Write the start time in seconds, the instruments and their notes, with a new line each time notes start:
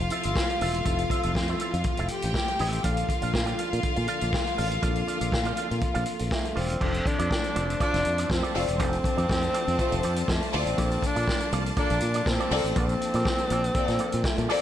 Already playing: string section C3 F3 A3 F4, tine electric piano F3 C4 F4 A4, violin section F4 F5
0.00 fingered electric bass F1, muted clean electric guitar stroke
0.10 clean electric guitar E4 A4 C5 E5, closed hi-hat
0.23 fingered electric bass G1, clean electric guitar E4 A4 C5 E5, closed hi-hat
0.36 kick, snare
0.50 muted clean electric guitar stroke, closed hi-hat
0.61 fingered electric bass E1, clean electric guitar E4 A4 C5 E5, open hi-hat
0.74 muted clean electric guitar stroke, closed hi-hat
0.85 fingered electric bass F1, tine electric piano F3 C4 F4 A4, clean electric guitar E4 A4 C5 E5, kick, closed hi-hat
0.98 closed hi-hat
1.10 clean electric guitar E4 A4 C5 E5, kick, closed hi-hat
1.23 fingered electric bass F1, clean electric guitar E4 A4 C5 E5, closed hi-hat
1.35 fingered electric bass F2, kick, snare
1.48 clean electric guitar E4 A4 C5 E5, closed hi-hat
1.60 clean electric guitar E4 A4 C5 E5, closed hi-hat
1.74 fingered electric bass F2, muted clean electric guitar stroke, closed hi-hat
1.84 muted clean electric guitar stroke, kick, closed hi-hat
1.97 fingered electric bass F1, clean electric guitar E4 A4 C5 E5, closed hi-hat
2.08 violin section G4 G5, closed hi-hat
2.22 fingered electric bass A1, muted clean electric guitar stroke, closed hi-hat
2.34 muted clean electric guitar stroke, kick, snare
2.48 muted clean electric guitar stroke, closed hi-hat
2.59 fingered electric bass A1, clean electric guitar E4 A4 C5 E5, open hi-hat
2.72 clean electric guitar E4 A4 C5 E5, closed hi-hat
2.83 fingered electric bass A#1, string section D3 A#3 F4 A4, tine electric piano F3 A#3 D4 A4, clean electric guitar F4 A4 D5 F5, violin section F4 F5, kick, closed hi-hat
2.97 closed hi-hat
3.09 kick, closed hi-hat
3.22 fingered electric bass A#1, clean electric guitar F4 A4 D5 F5, closed hi-hat
3.34 fingered electric bass A#2, muted clean electric guitar stroke, kick, snare
3.46 clean electric guitar F4 A4 D5 G5, closed hi-hat
3.58 clean electric guitar F4 A4 D5 F5, closed hi-hat
3.71 fingered electric bass A#2, muted clean electric guitar stroke, closed hi-hat
3.83 muted clean electric guitar stroke, muted fingered electric bass stroke, kick, closed hi-hat
3.96 fingered electric bass A#2, muted clean electric guitar stroke, closed hi-hat
4.07 clean electric guitar F4 A4 D5 F5, closed hi-hat
4.21 fingered electric bass A#1, clean electric guitar F4 A4 D5 F5, closed hi-hat
4.33 kick, snare
4.45 muted clean electric guitar stroke, closed hi-hat
4.57 fingered electric bass A1, clean electric guitar F4 A4 D5 F5, open hi-hat
4.70 muted clean electric guitar stroke, closed hi-hat
4.81 fingered electric bass A#1, tine electric piano F3 A#3 C4 A4, clean electric guitar F4 A4 D5 F5, kick, closed hi-hat
4.88 tine electric piano D4
4.96 closed hi-hat
5.07 clean electric guitar F4 A4 D5 F5, closed hi-hat
5.21 fingered electric bass A#1, clean electric guitar F4 A4 D5 F5, closed hi-hat
5.32 fingered electric bass A#2, kick, snare
5.45 clean electric guitar F4 A4 D5 F5, closed hi-hat
5.57 clean electric guitar F4 A4 D5 F5, closed hi-hat
5.70 fingered electric bass A#2, muted clean electric guitar stroke, closed hi-hat
5.81 muted clean electric guitar stroke, kick, closed hi-hat
5.94 fingered electric bass A#1, clean electric guitar F4 A4 D5 F5, closed hi-hat
6.06 closed hi-hat
6.19 fingered electric bass A#1, muted clean electric guitar stroke, closed hi-hat
6.31 tenor saxophone A3, muted clean electric guitar stroke, kick, snare
6.45 muted clean electric guitar stroke, closed hi-hat
6.55 fingered electric bass E1, tenor saxophone C4, clean electric guitar F4 A4 D5 F5, open hi-hat
6.69 clean electric guitar F4 A4 D5 F5, closed hi-hat
6.80 fingered electric bass F1, tine electric piano F3 C4 D4 A4, clean electric guitar C4 F4 A4 D5, string section F4 C5 D5 A5, kick, crash
6.94 muted clean electric guitar stroke, closed hi-hat
7.05 tenor saxophone D4, muted clean electric guitar stroke, kick, closed hi-hat
7.19 fingered electric bass F2, clean electric guitar C4 F4 A4 D5, closed hi-hat
7.31 kick, snare
7.44 muted clean electric guitar stroke, closed hi-hat
7.56 fingered electric bass F1, clean electric guitar C4 F4 A4 D5, closed hi-hat
7.69 muted clean electric guitar stroke, closed hi-hat
7.80 violin section A3 F4 D5, clean electric guitar C4 F4 A4 D5, tenor saxophone D4, kick, closed hi-hat
7.93 fingered electric bass F1, muted clean electric guitar stroke, snare, closed hi-hat
8.05 fingered electric bass F2, muted clean electric guitar stroke, closed hi-hat
8.18 clean electric guitar C4 F4 A4 D5, closed hi-hat
8.30 fingered electric bass F2, tenor saxophone C4, muted clean electric guitar stroke, kick, snare
8.43 clean electric guitar C4 F4 A4 D5, closed hi-hat
8.55 fingered electric bass F1, violin section A3 F4 D5, clean electric guitar C4 F4 A4 E5, open hi-hat
8.67 fingered electric bass E1, muted clean electric guitar stroke, closed hi-hat
8.78 fingered electric bass F1, tine electric piano F3 C4 D4 A4, clean electric guitar C4 F4 A4 D5, kick, closed hi-hat
8.82 tenor saxophone C4
8.93 muted clean electric guitar stroke, closed hi-hat
9.04 muted clean electric guitar stroke, kick, closed hi-hat
9.17 fingered electric bass F2, clean electric guitar C4 F4 A4 D5, closed hi-hat
9.29 fingered electric bass F2, kick, snare
9.41 muted clean electric guitar stroke, closed hi-hat
9.53 clean electric guitar C4 F4 A4 D5, closed hi-hat
9.67 fingered electric bass F2, muted clean electric guitar stroke, closed hi-hat
9.79 violin section A3 F4 C5, kick, closed hi-hat
9.92 fingered electric bass F1, muted clean electric guitar stroke, closed hi-hat
10.03 fingered electric bass F2, clean electric guitar C4 F4 A4 D5, closed hi-hat
10.16 muted clean electric guitar stroke, closed hi-hat
10.28 fingered electric bass F2, tenor saxophone A3, muted clean electric guitar stroke, kick, snare
10.41 muted clean electric guitar stroke, closed hi-hat
10.53 fingered electric bass D2, violin section A3 F4 D5, tenor saxophone C4, open hi-hat
10.66 fingered electric bass A1, muted clean electric guitar stroke, closed hi-hat
10.77 fingered electric bass A#1, tine electric piano F3 A#3 D4 A4, clean electric guitar A#3 F4 A4 D5, string section A#3, kick, closed hi-hat
10.90 muted clean electric guitar stroke, closed hi-hat
11.02 tenor saxophone D4, muted clean electric guitar stroke, kick, closed hi-hat
11.16 fingered electric bass A#2, clean electric guitar A#3 F4 A4 D5, closed hi-hat
11.28 kick, snare
11.40 muted clean electric guitar stroke, closed hi-hat
11.53 fingered electric bass C2, clean electric guitar A#3 F4 A4 D5, closed hi-hat
11.66 muted clean electric guitar stroke, closed hi-hat
11.77 clean electric guitar A#3 F4 A4 D5, violin section A#3 A4 D5, tenor saxophone D4, kick, closed hi-hat
11.90 fingered electric bass A#1, muted clean electric guitar stroke, closed hi-hat
12.01 fingered electric bass A#2, muted clean electric guitar stroke, closed hi-hat
12.14 clean electric guitar A#3 F4 A4 D5, closed hi-hat
12.26 fingered electric bass A#2, tenor saxophone C4, muted clean electric guitar stroke, kick, snare
12.40 clean electric guitar A#3 F4 A4 D5, closed hi-hat
12.51 fingered electric bass C2, violin section A#3 A4 D5, clean electric guitar A#3 F4 A4 E5, open hi-hat
12.64 fingered electric bass A1, muted clean electric guitar stroke, closed hi-hat
12.75 fingered electric bass A#1, tine electric piano F3 A#3 D4 A4, clean electric guitar A#3 F4 A4 D5, kick, closed hi-hat
12.79 tenor saxophone C4
12.89 muted clean electric guitar stroke, closed hi-hat
13.01 muted clean electric guitar stroke, closed hi-hat
13.14 fingered electric bass A#2, clean electric guitar A#3 F4 A4 D5, closed hi-hat
13.25 kick, snare
13.38 muted clean electric guitar stroke, closed hi-hat
13.50 fingered electric bass A#1, clean electric guitar A#3 F4 A4 D5, closed hi-hat
13.64 muted clean electric guitar stroke, closed hi-hat
13.75 violin section A#3 A4 D5, kick, closed hi-hat
13.88 fingered electric bass A#2, muted clean electric guitar stroke, snare, closed hi-hat
13.99 clean electric guitar A#3 F4 A4 D5, closed hi-hat
14.12 fingered electric bass A#2, muted clean electric guitar stroke, closed hi-hat
14.24 tenor saxophone A3, muted clean electric guitar stroke, kick, snare
14.37 fingered electric bass A#2, muted clean electric guitar stroke, closed hi-hat
14.48 clean electric guitar A#3 F4 A4 D5, violin section A#3 A4 D5, tenor saxophone C4, open hi-hat